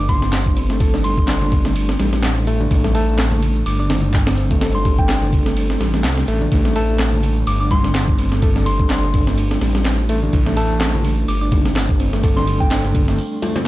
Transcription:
Already playing: detuned saw bass G1, reed electric piano A3, sub drop
0.00 reed electric piano D4
0.09 synth bell C6, kick, ride, high conga, low conga
0.22 snare, high conga, shaker
0.33 snare, clap, open hi-hat, shaker
0.46 kick, shaker
0.56 reed electric piano C4, ride
0.70 reed electric piano A3, snare, shaker
0.80 reed electric piano A4, kick, ride, shaker
0.94 reed electric piano D4, snare, high conga, shaker
1.04 reed electric piano G3, synth bell C6, ride
1.17 kick, shaker
1.28 reed electric piano D4, snare, clap, ride, shaker
1.41 ride, low conga, shaker
1.52 kick, ride
1.65 reed electric piano A3, snare, shaker
1.76 ride, shaker
1.89 snare, shaker
1.99 detuned saw bass A1, reed electric piano G3, snare, ride, high conga
2.13 snare, high conga, shaker
2.23 snare, clap, ride, shaker
2.37 shaker
2.47 reed electric piano A3, ride
2.60 reed electric piano D4, low conga, shaker
2.71 detuned saw bass A1, kick, ride, shaker
2.84 reed electric piano A3, snare, high conga, shaker
2.95 reed electric piano A3, synth bell A5, ride
3.08 shaker
3.19 snare, clap, ride, shaker
3.31 low conga, shaker
3.42 ride
3.56 shaker
3.66 detuned saw bass G1, synth bell D6, ride, shaker
3.79 reed electric piano D4, synth bell D6, shaker
3.90 snare, ride, high conga, low conga
4.03 high conga, shaker
4.14 kick, clap, ride, shaker
4.27 snare, ride, shaker
4.38 reed electric piano C4, ride
4.51 reed electric piano A3, kick, ride, shaker
4.61 reed electric piano A4, snare, ride, shaker
4.74 reed electric piano D4, synth bell C6, high conga, shaker
4.85 reed electric piano G3, kick, ride
4.98 synth bell G5, kick, shaker
5.09 reed electric piano D4, synth bell G5, snare, clap, ride, shaker
5.22 ride, low conga, shaker
5.33 kick, ride
5.46 reed electric piano A3, snare, shaker
5.57 ride, shaker
5.70 snare, shaker
5.80 detuned saw bass A1, reed electric piano G3, snare, ride, high conga
5.93 snare, high conga, shaker
6.04 detuned saw bass C2, snare, clap, ride, shaker
6.17 snare, shaker
6.28 detuned saw bass A1, reed electric piano A3, ride
6.41 reed electric piano D4, low conga, shaker
6.52 detuned saw bass A1, kick, ride, shaker
6.65 reed electric piano A3, snare, high conga, shaker
6.76 reed electric piano A3, synth bell A5, ride
6.89 shaker
6.99 snare, clap, ride, shaker
7.13 low conga, shaker
7.23 ride
7.37 shaker
7.47 detuned saw bass G1, synth bell D6, ride, shaker
7.60 reed electric piano D4, synth bell D6, shaker
7.71 synth bell C6, kick, ride, high conga, low conga
7.84 snare, high conga, shaker
7.95 snare, clap, open hi-hat, shaker
8.08 kick, shaker
8.19 reed electric piano C4, ride
8.32 reed electric piano A3, snare, shaker
8.42 reed electric piano A4, kick, ride, shaker
8.56 reed electric piano D4, snare, high conga, shaker
8.66 reed electric piano G3, synth bell C6, ride
8.79 kick, shaker
8.90 reed electric piano D4, snare, clap, ride, shaker
9.03 ride, low conga, shaker
9.14 kick, ride
9.27 reed electric piano A3, snare, shaker
9.38 ride, shaker
9.51 snare, shaker
9.61 detuned saw bass A1, reed electric piano G3, snare, ride, high conga
9.75 snare, high conga, shaker
9.85 snare, clap, ride, shaker
9.99 shaker
10.09 reed electric piano A3, ride
10.23 reed electric piano D4, low conga, shaker
10.33 detuned saw bass A1, kick, ride, shaker
10.46 reed electric piano A3, snare, high conga, shaker
10.57 reed electric piano A3, synth bell A5, ride
10.70 shaker
10.81 snare, clap, ride, shaker
10.94 low conga, shaker
11.04 ride
11.18 shaker
11.28 detuned saw bass G1, synth bell D6, ride, shaker
11.41 reed electric piano D4, synth bell D6, shaker
11.52 kick, ride, high conga, low conga
11.65 snare, high conga, shaker
11.76 snare, clap, open hi-hat, shaker
11.89 kick, shaker
12.00 reed electric piano C4, ride
12.13 reed electric piano A3, snare, shaker
12.23 reed electric piano A4, kick, ride, shaker
12.37 reed electric piano D4, synth bell C6, snare, high conga, shaker
12.47 reed electric piano G3, ride
12.60 synth bell G5, kick, shaker
12.71 reed electric piano D4, synth bell G5, snare, clap, ride, shaker
12.84 ride, low conga, shaker
12.95 kick, ride
13.08 reed electric piano A3, snare, shaker
13.19 ride, shaker
13.32 shaker
13.42 reed electric piano A3, snare, ride, high conga
13.56 reed electric piano C4, snare, high conga, low conga, shaker

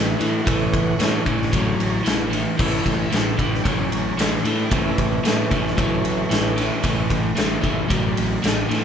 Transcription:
Already playing: picked electric bass A1, overdriven electric guitar A2 E3, tonewheel organ E3 A3
0.17 overdriven electric guitar A2 E3, picked electric bass A2, tonewheel organ D#4, ride
0.22 tonewheel organ E4
0.36 tonewheel organ F#4
0.46 picked electric bass A1, overdriven electric guitar A2 E3, tonewheel organ E3 A3 C#4 A4, kick, ride
0.62 tonewheel organ C#5
0.73 picked electric bass A1, tonewheel organ F#5, kick, ride
0.99 overdriven electric guitar A2 E3, picked electric bass A2, tonewheel organ C#5, snare, ride
1.26 picked electric bass A1, overdriven electric guitar A2 E3, kick, ride
1.42 snare
1.52 picked electric bass A1, overdriven electric guitar A2 F#3, kick, ride
1.80 picked electric bass A1, ride
2.04 picked electric bass A1, overdriven electric guitar A2 E3, snare, ride
2.30 overdriven electric guitar A2 E3, ride
2.58 picked electric bass A1, overdriven electric guitar A2 E3, tonewheel organ E3 A3 C#4 E5, kick, crash
2.86 picked electric bass A1, tonewheel organ C5, kick, ride
3.02 tonewheel organ E5
3.11 picked electric bass A1, overdriven electric guitar A2 E3, snare, ride
3.15 tonewheel organ C5
3.26 tonewheel organ A4
3.37 picked electric bass A1, overdriven electric guitar A2 E3, tonewheel organ G4, kick, ride
3.54 snare
3.64 picked electric bass A1, overdriven electric guitar A2 F#3, kick, ride
3.68 tonewheel organ C#4
3.92 picked electric bass A1, ride
4.18 picked electric bass A1, overdriven electric guitar A2 E3, snare, ride
4.44 picked electric bass A2, overdriven electric guitar A2 E3, tonewheel organ A4, ride
4.59 tonewheel organ G4
4.71 picked electric bass A1, overdriven electric guitar A2 E3, tonewheel organ E3 A3 C4 C#4, kick, ride
4.87 tonewheel organ A4
4.98 picked electric bass A1, tonewheel organ G4, kick, ride
5.12 tonewheel organ C4
5.24 overdriven electric guitar A2 E3, picked electric bass A2, tonewheel organ C#4, snare, ride
5.51 picked electric bass A1, overdriven electric guitar A2 E3, kick, ride
5.67 snare
5.77 picked electric bass A1, overdriven electric guitar A2 F#3, kick, ride
6.04 picked electric bass A1, ride
6.29 picked electric bass A1, overdriven electric guitar A2 E3, snare, ride
6.56 overdriven electric guitar A2 E3, snare, ride
6.82 picked electric bass A1, overdriven electric guitar A2 E3, tonewheel organ E3 A3 C#4, kick, ride
7.10 picked electric bass A1, kick, ride
7.36 picked electric bass A1, overdriven electric guitar A2 E3, snare, ride
7.62 picked electric bass A1, overdriven electric guitar A2 E3, tonewheel organ E3 A3 C#4, kick, ride
7.89 picked electric bass A1, overdriven electric guitar A2 F#3, kick, ride
8.17 picked electric bass A1, ride
8.42 picked electric bass A1, overdriven electric guitar A2 E3, snare, ride
8.69 overdriven electric guitar A2 E3, picked electric bass A2, tonewheel organ A4, ride
8.73 snare

